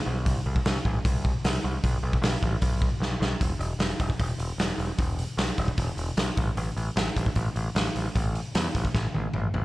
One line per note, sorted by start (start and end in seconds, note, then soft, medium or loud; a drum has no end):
0.06 0.26 B1 medium
0.26 0.39 C2 medium
0.26 kick loud
0.26 open hi-hat medium
0.46 0.59 C2 medium
0.56 kick medium
0.65 0.79 C2 loud
0.65 snare loud
0.65 open hi-hat medium
0.85 0.98 A1 loud
0.85 kick medium
1.05 1.31 C2 medium
1.05 kick loud
1.05 open hi-hat medium
1.25 kick medium
1.44 1.57 C2 medium
1.44 snare loud
1.44 open hi-hat medium
1.64 1.77 C2 medium
1.84 1.97 B1 medium
1.84 kick loud
1.84 open hi-hat medium
2.03 2.16 B1 medium
2.13 kick medium
2.22 2.35 B1 loud
2.22 snare loud
2.22 open hi-hat medium
2.42 2.56 A1 loud
2.42 kick medium
2.62 2.88 B1 loud
2.62 kick loud
2.62 open hi-hat medium
2.82 kick medium
3.00 3.14 B1 medium
3.00 snare medium
3.20 3.34 B1 medium
3.20 snare medium
3.41 3.53 E1 medium
3.41 kick medium
3.41 open hi-hat medium
3.59 3.72 E1 medium
3.59 open hi-hat medium
3.79 3.91 E1 medium
3.79 snare loud
3.79 open hi-hat medium
4.00 4.12 E1 medium
4.00 kick medium
4.00 open hi-hat soft
4.10 kick medium
4.19 4.32 E1 loud
4.19 kick medium
4.19 open hi-hat medium
4.38 4.51 E1 medium
4.38 open hi-hat medium
4.58 4.71 E1 medium
4.58 snare loud
4.58 open hi-hat medium
4.78 4.91 E1 medium
4.78 open hi-hat soft
4.98 5.22 E1 medium
4.98 kick loud
4.98 open hi-hat medium
5.19 open hi-hat medium
5.38 5.50 B1 medium
5.38 snare loud
5.38 open hi-hat medium
5.58 5.70 E1 loud
5.58 kick medium
5.58 open hi-hat medium
5.68 kick medium
5.78 5.90 E1 medium
5.78 kick medium
5.78 open hi-hat medium
5.97 6.09 E1 medium
5.97 open hi-hat medium
6.17 6.29 B1 medium
6.17 snare loud
6.17 open hi-hat medium
6.37 6.49 A1 medium
6.37 kick loud
6.37 open hi-hat medium
6.57 6.69 A1 medium
6.57 open hi-hat medium
6.77 6.89 A1 medium
6.77 open hi-hat medium
6.96 7.08 A1 medium
6.96 snare loud
6.96 open hi-hat medium
7.16 7.28 A1 medium
7.16 kick medium
7.16 open hi-hat medium
7.26 kick medium
7.35 7.48 A1 medium
7.35 kick medium
7.35 open hi-hat medium
7.56 7.68 A1 medium
7.56 open hi-hat medium
7.75 7.87 A1 medium
7.75 snare loud
7.75 open hi-hat medium
7.95 8.07 A1 medium
7.95 open hi-hat medium
8.15 8.39 A1 medium
8.15 kick loud
8.15 open hi-hat medium
8.35 open hi-hat medium
8.55 8.67 E2 medium
8.55 snare loud
8.55 open hi-hat medium
8.75 8.87 A1 medium
8.75 kick medium
8.75 open hi-hat medium
8.85 kick medium
8.94 9.06 A1 medium
8.94 kick loud
8.94 snare medium
9.14 9.27 A1 medium
9.14 high tom medium
9.34 9.47 A1 medium
9.34 mid tom medium
9.54 9.65 A1 medium
9.54 floor tom medium